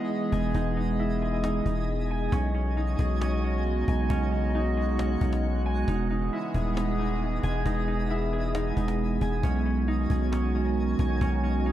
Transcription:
0.00 2.29 E3 medium
0.00 2.29 G#3 medium
0.00 2.29 B3 medium
0.00 1.00 C#4 medium
0.00 0.54 D#4 medium
0.00 0.61 E4 medium
0.00 2.29 E4 medium
0.00 1.21 G#4 medium
0.00 2.29 G#4 loud
0.00 2.29 D#5 medium
0.00 2.29 G#5 medium
0.10 cajon slap soft
0.32 0.54 E1 loud
0.32 1.82 G#5 loud
0.32 cajon bass medium
0.55 1.62 E1 loud
0.55 0.76 D#4 medium
0.55 cajon bass loud
0.77 1.43 D#4 medium
0.77 cajon slap soft
0.84 cajon slap soft
0.92 cajon slap soft
0.99 2.83 E4 medium
0.99 cajon slap soft
1.22 2.99 G#4 medium
1.44 1.65 D#4 medium
1.44 cajon slap loud
1.66 2.30 E1 loud
1.66 2.76 D#4 medium
1.66 cajon bass medium
1.88 cajon slap soft
2.10 3.61 G#5 medium
2.10 cajon slap soft
2.18 cajon slap soft
2.25 cajon slap soft
2.32 2.96 B1 loud
2.32 5.84 C#3 medium
2.32 11.72 G#3 medium
2.32 5.84 B3 medium
2.32 2.54 C#4 loud
2.32 5.84 D#4 medium
2.32 5.84 F#4 medium
2.32 5.84 C#5 medium
2.32 7.62 D#5 medium
2.32 4.08 G#5 medium
2.32 cajon bass loud
2.54 3.20 C#4 medium
2.54 cajon slap soft
2.77 4.54 D#4 medium
2.77 cajon slap soft
2.99 3.84 B1 loud
2.99 4.76 G#4 medium
2.99 cajon bass medium
3.21 3.43 C#4 medium
3.21 cajon slap loud
3.44 4.10 C#4 medium
3.44 cajon slap soft
3.66 cajon slap soft
3.88 4.09 B1 loud
3.88 5.38 G#5 loud
3.88 cajon bass medium
4.05 cajon slap soft
4.10 5.17 B1 loud
4.10 4.32 C#4 loud
4.10 5.86 F#5 medium
4.10 cajon bass loud
4.32 4.98 C#4 medium
4.32 cajon slap soft
4.55 5.88 D#4 medium
4.55 cajon slap soft
4.77 6.54 G#4 medium
4.99 5.21 C#4 medium
4.99 cajon slap loud
5.21 5.85 B1 loud
5.21 8.11 C#4 medium
5.21 cajon bass medium
5.33 cajon slap loud
5.66 7.16 G#5 medium
5.66 cajon slap soft
5.71 cajon slap soft
5.77 cajon slap soft
5.82 cajon slap soft
5.88 6.30 E1 loud
5.88 9.40 E3 medium
5.88 11.72 B3 medium
5.88 6.10 D#4 loud
5.88 9.40 E4 medium
5.88 9.40 G#4 medium
5.88 9.40 D#5 medium
5.88 9.40 G#5 medium
5.88 cajon bass loud
6.10 6.76 D#4 medium
6.10 cajon slap soft
6.32 7.72 E4 medium
6.32 cajon slap soft
6.54 7.40 D#1 loud
6.54 8.32 G#4 medium
6.54 cajon bass medium
6.77 6.98 D#4 medium
6.77 cajon slap loud
6.99 7.65 D#4 medium
6.99 cajon slap soft
7.21 cajon slap soft
7.43 7.65 E1 loud
7.43 8.93 G#5 loud
7.43 cajon bass medium
7.60 cajon slap soft
7.66 8.73 E1 loud
7.66 7.87 D#4 medium
7.66 cajon bass loud
7.88 8.54 D#4 medium
7.88 cajon slap soft
8.10 9.94 E4 medium
8.10 cajon slap soft
8.32 10.11 G#4 medium
8.32 cajon slap soft
8.55 8.76 D#4 medium
8.55 cajon slap loud
8.77 9.19 E1 loud
8.77 9.87 D#4 medium
8.77 cajon bass medium
8.88 cajon slap loud
8.99 cajon slap soft
9.21 9.43 E1 loud
9.21 10.72 G#5 medium
9.21 cajon bass medium
9.43 10.07 B1 loud
9.43 11.72 D#3 medium
9.43 11.19 C#4 medium
9.43 9.65 C#4 loud
9.43 11.72 D#4 medium
9.43 11.72 F#4 loud
9.43 11.72 C#5 medium
9.43 11.72 G#5 medium
9.43 cajon bass loud
9.65 10.31 C#4 medium
9.65 cajon slap soft
9.88 11.65 D#4 medium
9.88 cajon slap soft
10.10 10.95 B1 loud
10.10 11.72 G#4 medium
10.10 cajon bass medium
10.32 10.55 C#4 medium
10.32 cajon slap loud
10.55 11.21 C#4 medium
10.55 cajon slap soft
10.77 cajon slap soft
10.99 11.20 B1 loud
10.99 11.72 G#5 medium
10.99 cajon bass loud
11.16 cajon slap soft
11.21 11.72 B1 loud
11.21 11.43 C#4 loud
11.21 11.72 D#4 medium
11.21 cajon bass loud
11.43 11.72 C#4 medium
11.43 cajon slap soft
11.66 11.72 D#4 medium
11.66 cajon slap soft

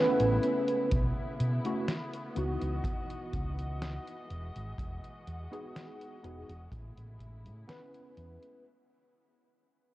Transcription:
0.00 0.89 C#3 medium
0.00 0.87 G#3 medium
0.00 0.89 A3 medium
0.00 0.88 B3 medium
0.00 0.88 C#4 medium
0.00 0.88 E4 medium
0.00 0.89 E4 medium
0.00 0.89 B4 loud
0.20 0.37 A1 loud
0.20 closed hi-hat soft
0.43 closed hi-hat soft
0.68 closed hi-hat soft
0.91 1.10 B1 medium
0.91 2.35 C#3 medium
0.91 2.35 A3 medium
0.91 4.26 B3 medium
0.91 2.35 E4 medium
0.91 kick loud
0.91 closed hi-hat medium
1.40 1.59 B2 medium
1.40 closed hi-hat medium
1.64 1.90 A3 medium
1.64 1.90 C#4 medium
1.64 1.90 E4 medium
1.64 1.90 F#4 medium
1.64 closed hi-hat soft
1.88 snare loud
1.88 closed hi-hat medium
2.13 closed hi-hat soft
2.35 2.55 C#2 medium
2.35 6.68 E3 medium
2.35 4.26 B3 medium
2.35 4.27 D#4 medium
2.35 4.27 E4 medium
2.35 4.28 F#4 medium
2.35 6.68 D#5 medium
2.35 closed hi-hat medium
2.61 2.79 C#2 medium
2.61 closed hi-hat soft
2.84 kick loud
2.84 closed hi-hat medium
3.10 closed hi-hat soft
3.33 3.97 C#2 medium
3.33 kick medium
3.33 closed hi-hat medium
3.59 closed hi-hat soft
3.82 snare loud
3.82 closed hi-hat medium
4.07 closed hi-hat soft
4.29 4.49 E1 medium
4.29 8.61 G#3 medium
4.29 6.69 F#4 medium
4.29 closed hi-hat soft
4.56 4.73 G#1 medium
4.56 closed hi-hat soft
4.78 4.97 E1 medium
4.78 kick loud
4.78 closed hi-hat medium
5.04 closed hi-hat soft
5.27 5.46 E2 medium
5.27 closed hi-hat medium
5.51 6.17 B3 medium
5.51 6.18 D#4 medium
5.51 6.18 F#4 medium
5.51 6.18 G#4 loud
5.51 closed hi-hat soft
5.76 snare loud
5.76 closed hi-hat medium
6.01 closed hi-hat soft
6.23 6.43 E1 medium
6.23 6.50 B3 medium
6.23 6.50 D#4 medium
6.23 6.51 F#4 medium
6.23 6.51 G#4 medium
6.23 closed hi-hat medium
6.49 6.66 E1 medium
6.49 closed hi-hat soft
6.72 6.91 A1 medium
6.72 8.63 C#3 medium
6.72 8.63 A3 medium
6.72 8.63 E4 medium
6.72 kick loud
6.72 closed hi-hat medium
6.98 7.48 A1 medium
6.98 closed hi-hat soft
7.20 kick soft
7.20 closed hi-hat medium
7.46 7.63 A2 medium
7.46 closed hi-hat soft
7.67 8.62 B3 medium
7.67 8.62 C#4 medium
7.67 8.63 E4 medium
7.67 8.63 B4 loud
7.67 snare loud
7.67 closed hi-hat medium
7.94 closed hi-hat soft
8.17 8.36 E2 medium
8.17 closed hi-hat soft
8.43 closed hi-hat soft

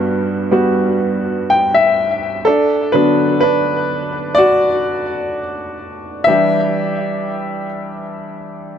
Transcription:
0.00 2.42 G2 medium
0.00 0.49 G3 soft
0.00 0.49 B3 soft
0.00 0.50 F#4 medium
0.51 1.46 G3 soft
0.51 1.46 B3 soft
0.51 1.47 F#4 medium
1.50 1.72 G5 medium
1.74 2.42 E5 medium
2.45 2.91 D4 medium
2.45 2.95 A4 medium
2.92 4.33 D3 soft
2.92 4.34 F#3 soft
2.92 4.34 B3 medium
2.92 3.39 D4 medium
2.92 3.38 B4 medium
3.40 4.34 D4 medium
3.40 4.40 B4 medium
4.35 6.24 F#4 medium
4.35 6.32 D5 medium
6.24 7.65 E3 medium
6.24 7.66 G3 soft
6.24 7.66 D4 medium
6.24 8.78 G4 medium
6.24 8.78 E5 medium

